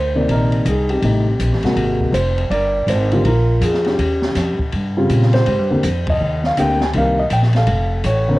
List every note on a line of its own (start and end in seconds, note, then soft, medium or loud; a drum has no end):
0.00 0.27 D2 medium
0.00 0.27 A#4 medium
0.00 0.31 C5 medium
0.15 0.63 C3 medium
0.15 0.64 D#3 medium
0.15 0.64 A#3 medium
0.15 0.64 D5 medium
0.28 0.64 A#1 medium
0.28 0.68 A#4 medium
0.28 ride medium
0.33 1.01 D#4 medium
0.52 ride soft
0.65 1.01 C2 medium
0.65 0.89 G#4 medium
0.65 hi-hat pedal soft
0.65 ride medium
0.89 1.61 C4 soft
0.89 1.60 G4 medium
0.89 ride soft
1.02 1.38 A1 medium
1.02 1.24 C3 medium
1.02 1.25 G3 medium
1.02 1.25 A3 medium
1.02 1.25 D#4 medium
1.02 ride medium
1.39 1.52 A#1 medium
1.39 hi-hat pedal medium
1.39 ride medium
1.52 1.63 A1 medium
1.52 snare soft
1.63 1.75 G1 medium
1.63 2.12 C3 medium
1.63 2.12 G#3 medium
1.63 2.12 A#3 medium
1.63 2.12 F#4 medium
1.63 snare soft
1.63 ride soft
1.76 2.12 G#1 medium
1.76 ride medium
2.01 kick soft
2.12 2.49 F1 medium
2.12 2.48 C5 medium
2.12 hi-hat pedal medium
2.12 ride medium
2.38 ride soft
2.50 2.86 G1 medium
2.50 3.22 A#4 medium
2.50 2.89 D5 loud
2.50 ride medium
2.87 3.23 G#1 medium
2.87 3.27 C5 medium
2.87 hi-hat pedal medium
2.87 ride medium
3.12 3.24 D3 medium
3.12 3.24 G3 medium
3.12 3.24 A#3 medium
3.12 3.24 F4 medium
3.12 ride soft
3.24 3.60 A#1 medium
3.24 3.60 A#4 medium
3.24 ride medium
3.28 3.97 F4 medium
3.61 3.97 F2 medium
3.61 3.87 G#4 medium
3.61 hi-hat pedal soft
3.61 ride medium
3.74 snare soft
3.85 4.56 C#4 soft
3.85 4.56 G4 medium
3.85 snare soft
3.85 ride soft
3.98 4.35 D#2 medium
3.98 ride medium
4.22 snare soft
4.35 4.57 F2 medium
4.35 snare soft
4.35 hi-hat pedal soft
4.35 ride medium
4.59 muted upright bass stroke soft
4.59 kick soft
4.72 5.09 G2 medium
4.72 ride medium
4.97 5.44 C#3 medium
4.97 5.44 G3 medium
4.97 5.45 C4 medium
4.97 5.45 F4 medium
5.09 5.45 A#2 medium
5.09 hi-hat pedal medium
5.09 ride medium
5.22 snare soft
5.33 5.70 G4 medium
5.33 6.10 C5 medium
5.33 snare soft
5.33 ride soft
5.46 5.59 G#2 medium
5.46 ride medium
5.59 5.70 G2 soft
5.70 5.83 D#2 medium
5.70 5.83 D3 medium
5.70 5.83 A#3 medium
5.70 5.83 C4 medium
5.70 5.83 G4 medium
5.83 6.19 F2 medium
5.83 hi-hat pedal medium
5.83 ride medium
6.07 6.46 D#5 medium
6.07 kick medium
6.07 ride medium
6.21 6.56 D#2 medium
6.44 6.59 F5 medium
6.44 snare soft
6.57 6.93 D2 medium
6.57 6.79 D3 medium
6.57 6.79 A#3 medium
6.57 6.79 C4 medium
6.57 6.79 G4 medium
6.57 6.81 G5 loud
6.57 hi-hat pedal soft
6.57 ride medium
6.81 6.87 G#5 medium
6.81 snare soft
6.93 7.30 C2 medium
6.93 7.16 D#3 medium
6.93 7.16 A#3 medium
6.93 7.16 C4 medium
6.93 7.16 G4 medium
6.93 ride medium
6.98 7.66 A#4 medium
6.98 7.18 F5 medium
7.19 7.24 D#5 medium
7.30 7.66 A#1 medium
7.30 7.38 G5 medium
7.30 hi-hat pedal soft
7.30 ride medium
7.43 snare soft
7.53 8.25 A4 medium
7.53 7.90 F5 medium
7.53 snare soft
7.53 ride soft
7.67 8.03 F1 medium
7.67 ride medium
8.04 8.39 A1 medium
8.04 8.38 C#5 medium
8.04 hi-hat pedal medium
8.04 ride medium
8.28 8.39 D3 medium
8.28 8.39 A#3 medium
8.28 8.39 C4 medium
8.28 8.39 A#4 medium